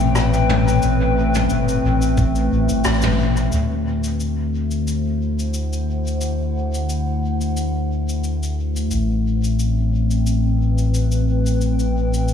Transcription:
0.00 0.80 A1 medium
0.00 3.52 A2 medium
0.00 12.34 A3 medium
0.00 5.13 C4 medium
0.00 3.52 B4 medium
0.00 3.53 G5 medium
0.00 cabasa medium
0.15 cross-stick medium
0.15 cabasa medium
0.34 cabasa soft
0.49 mid tom medium
0.68 cabasa medium
0.82 1.47 A1 medium
0.82 cabasa medium
1.35 mid tom medium
1.35 cabasa medium
1.50 1.80 G1 loud
1.50 cabasa medium
1.69 cabasa soft
1.84 2.48 A1 loud
2.02 cabasa medium
2.17 kick loud
2.17 cabasa medium
2.35 cabasa medium
2.52 2.68 A1 medium
2.69 2.83 G1 medium
2.69 cabasa medium
2.84 3.49 A1 medium
2.84 cross-stick medium
2.84 cabasa medium
3.02 mid tom medium
3.02 cabasa medium
3.37 cabasa medium
3.52 8.89 D2 medium
3.52 8.92 D3 medium
3.52 cabasa medium
4.04 cabasa medium
4.20 cabasa medium
4.61 8.92 C5 medium
4.71 9.91 E4 medium
4.71 cabasa soft
4.88 cabasa medium
5.30 8.91 F#5 medium
5.39 cabasa soft
5.54 cabasa medium
5.73 cabasa soft
6.07 cabasa soft
6.21 cabasa medium
6.75 cabasa soft
6.89 cabasa medium
7.41 cabasa medium
7.57 cabasa medium
8.09 cabasa soft
8.24 cabasa medium
8.43 cabasa soft
8.76 cabasa soft
8.91 12.34 A1 medium
8.91 12.34 A2 medium
8.91 cabasa medium
9.15 12.34 C4 medium
9.44 cabasa soft
9.59 cabasa medium
10.11 cabasa medium
10.27 cabasa medium
10.33 12.34 B4 medium
10.78 cabasa soft
10.94 cabasa medium
11.07 12.34 G5 medium
11.12 cabasa soft
11.46 cabasa soft
11.61 cabasa medium
11.79 cabasa soft
12.14 cabasa soft
12.28 cabasa medium

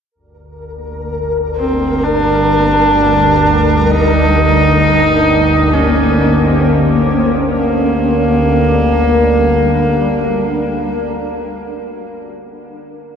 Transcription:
0.12 7.58 G1 medium
0.12 7.58 D2 medium
0.12 3.88 G3 medium
0.12 7.59 A#4 medium
0.80 5.34 A#4 medium
1.56 2.05 C4 medium
1.72 3.87 D4 medium
2.04 3.92 D4 medium
3.88 7.59 A#3 medium
3.88 5.75 D#4 loud
4.82 7.58 C#4 medium
5.14 7.58 C5 medium
5.73 6.65 C#4 medium
7.59 11.10 G1 medium
7.59 11.10 D2 medium
7.59 11.09 G3 medium
7.59 11.09 A#3 medium
7.71 11.22 D4 medium
7.84 11.35 A#4 medium

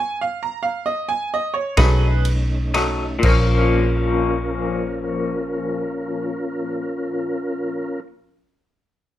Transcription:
0.00 0.18 G#5 loud
0.21 0.41 F5 medium
0.43 0.63 A#5 medium
0.63 0.84 F5 medium
0.86 1.07 D#5 loud
1.09 1.30 G#5 loud
1.34 1.54 D#5 loud
1.54 1.76 C#5 medium
1.77 3.19 B1 loud
1.77 2.07 F#3 soft
1.77 2.06 A3 soft
1.77 3.22 A3 medium
1.77 3.22 C#4 medium
1.77 2.06 D#4 medium
1.77 3.22 D#4 medium
1.77 2.22 G#4 medium
1.77 2.23 B4 loud
1.77 kick medium
1.77 snare loud
1.77 ride medium
2.25 ride medium
2.74 3.04 F#3 medium
2.74 3.03 A3 medium
2.74 3.03 D#4 medium
2.74 snare soft
2.74 ride medium
3.19 7.97 A#2 medium
3.19 crash medium
3.23 7.97 A#1 medium
3.23 8.01 F3 medium
3.23 8.03 A#3 medium
3.23 8.00 C#4 medium
3.23 8.00 F4 medium
3.23 8.01 A#4 medium
3.23 kick loud
3.29 8.07 C#4 medium

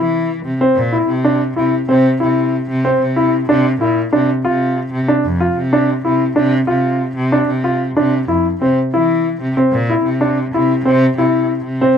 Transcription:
0.00 0.39 E3 medium
0.00 0.29 E4 medium
0.45 0.59 C3 medium
0.61 0.77 C4 medium
0.76 1.05 A#2 medium
0.93 1.09 E4 medium
1.08 1.51 C3 medium
1.24 1.41 D4 medium
1.56 1.85 C3 medium
1.56 1.73 E4 medium
1.89 2.17 C3 medium
1.89 2.05 C4 medium
2.20 2.64 C3 medium
2.20 2.52 E4 medium
2.69 2.97 C3 medium
2.85 3.01 C4 medium
3.01 3.43 C3 medium
3.16 3.33 E4 medium
3.49 3.77 C3 medium
3.49 3.65 D4 medium
3.81 4.09 A#2 medium
3.81 3.97 E4 medium
4.13 4.27 C3 medium
4.13 4.29 D4 medium
4.45 4.87 C3 medium
4.45 4.77 F4 medium
4.92 5.07 C3 medium
5.08 5.25 D4 medium
5.25 5.53 F2 medium
5.40 5.57 F4 medium
5.58 6.00 C3 medium
5.73 5.89 D4 medium
6.04 6.33 C3 medium
6.04 6.21 E4 medium
6.36 6.65 C3 medium
6.36 6.52 D4 medium
6.67 7.11 C3 medium
6.67 7.00 F4 medium
7.16 7.45 C3 medium
7.32 7.49 D4 medium
7.48 7.91 C3 medium
7.64 7.80 F4 medium
7.97 8.26 C3 medium
7.97 8.13 D4 medium
8.28 8.57 F2 medium
8.28 8.45 E4 medium
8.61 8.75 C3 medium
8.61 8.78 C4 medium
8.93 9.36 E3 medium
8.93 9.26 E4 medium
9.41 9.55 C3 medium
9.57 9.73 C4 medium
9.72 10.01 A#2 medium
9.90 10.06 E4 medium
10.04 10.47 C3 medium
10.21 10.37 D4 medium
10.54 10.82 C3 medium
10.54 10.70 E4 medium
10.85 11.13 C3 medium
10.85 11.02 C4 medium
11.17 11.60 C3 medium
11.17 11.50 E4 medium
11.64 11.93 C3 medium
11.81 11.98 C4 medium

